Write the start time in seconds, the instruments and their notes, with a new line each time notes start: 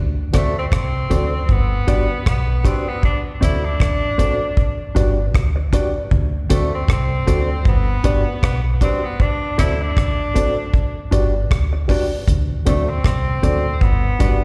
Already playing: fingered electric bass D2
0.33 fingered electric bass D2, tenor saxophone A3, clean electric guitar C4 F#4 A4 D5, reed electric piano F#4 A4 C5 D5, kick, cross-stick, closed hi-hat
0.58 tenor saxophone C4
0.72 fingered electric bass C2, tenor saxophone C4, kick, cross-stick
1.10 fingered electric bass D2, clean electric guitar C4 F#4 A4 D5, reed electric piano F#4 A4 C5 D5, kick, closed hi-hat
1.49 fingered electric bass G1, tenor saxophone B3, kick
1.87 fingered electric bass G1, clean electric guitar D4 F#4 B4 D5, reed electric piano F#4 G4 B4 D5, kick, closed hi-hat
2.26 fingered electric bass B1, tenor saxophone B3, kick, cross-stick
2.64 tenor saxophone C4, clean electric guitar D4 F#4 B4 D5, reed electric piano F#4 G4 B4 D5, kick, closed hi-hat
2.88 tenor saxophone B3
3.03 tenor saxophone D4, kick
3.41 fingered electric bass D2, clean electric guitar C4 F#4 A4 D5, tenor saxophone E4, reed electric piano F#4 A4 C5 D5, kick, closed hi-hat
3.64 tenor saxophone D4
3.80 fingered electric bass A1, kick, cross-stick
4.18 clean electric guitar C4 F#4 A4 D5, reed electric piano F#4 A4 C5 D5, kick, closed hi-hat
4.57 kick
4.95 fingered electric bass G1, clean electric guitar D4 F#4 B4 D5, reed electric piano F#4 G4 B4 D5, kick, closed hi-hat
5.18 reed electric piano B4 D5
5.35 fingered electric bass D2, kick, cross-stick
5.56 muted clean electric guitar stroke
5.73 fingered electric bass A1, clean electric guitar D4 F#4 B4 D5, reed electric piano F#4 G4 B4 D5, kick, closed hi-hat
5.95 reed electric piano B4 D5
6.11 fingered electric bass D2, kick
6.50 fingered electric bass D2, tenor saxophone A3, clean electric guitar C4 F#4 A4 D5, reed electric piano F#4 A4 C5 D5, kick, closed hi-hat
6.74 tenor saxophone C4
6.88 fingered electric bass C2, tenor saxophone C4, kick, cross-stick
7.27 fingered electric bass D2, clean electric guitar C4 F#4 A4 D5, reed electric piano F#4 A4 C5 D5, kick, closed hi-hat
7.65 fingered electric bass G1, tenor saxophone B3, kick
8.04 fingered electric bass G1, clean electric guitar D4 F#4 B4 D5, reed electric piano F#4 G4 B4 D5, kick, closed hi-hat
8.43 fingered electric bass B1, tenor saxophone B3, kick, cross-stick
8.81 tenor saxophone C4, clean electric guitar D4 F#4 B4 D5, reed electric piano F#4 G4 B4 D5, kick, closed hi-hat
9.04 tenor saxophone B3
9.20 tenor saxophone D4, kick
9.58 fingered electric bass D2, clean electric guitar C4 F#4 A4 D5, tenor saxophone E4, reed electric piano F#4 A4 C5 D5, kick, cross-stick, closed hi-hat
9.81 tenor saxophone D4
9.97 fingered electric bass A1, kick, cross-stick
10.34 clean electric guitar C4 F#4 A4 D5, reed electric piano F#4 A4 C5 D5, kick, closed hi-hat
10.74 kick
11.11 fingered electric bass G1, clean electric guitar D4 F#4 B4 D5, reed electric piano F#4 G4 B4 D5, kick, closed hi-hat
11.33 reed electric piano B4 D5
11.51 fingered electric bass D2, kick, cross-stick
11.73 muted clean electric guitar stroke
11.88 fingered electric bass A1, clean electric guitar D4 F#4 B4 D5, reed electric piano F#4 G4 B4 D5, kick, open hi-hat
12.10 reed electric piano B4 D5
12.28 fingered electric bass D2, kick, hi-hat pedal
12.49 tonewheel organ D2 A2
12.65 fingered electric bass D2, tonewheel organ F#3 C4 D4, tenor saxophone A3, clean electric guitar C4 F#4 A4 D5, reed electric piano F#4 A4 C5 D5, kick, closed hi-hat
12.88 tonewheel organ D2 A2, tenor saxophone C4
13.04 fingered electric bass C2, tenor saxophone C4, kick, cross-stick
13.26 tonewheel organ D2 A2
13.42 fingered electric bass D2, tonewheel organ F#3 C4 D4, clean electric guitar C4 F#4 A4 D5, reed electric piano F#4 A4 C5 D5, kick, closed hi-hat
13.65 tonewheel organ D2 A2
13.81 fingered electric bass G1, tenor saxophone B3, kick
14.04 tonewheel organ G2 D3
14.19 fingered electric bass G1, tonewheel organ G3 B3 F#4, clean electric guitar D4 F#4 B4 D5, reed electric piano F#4 G4 B4 D5, kick, closed hi-hat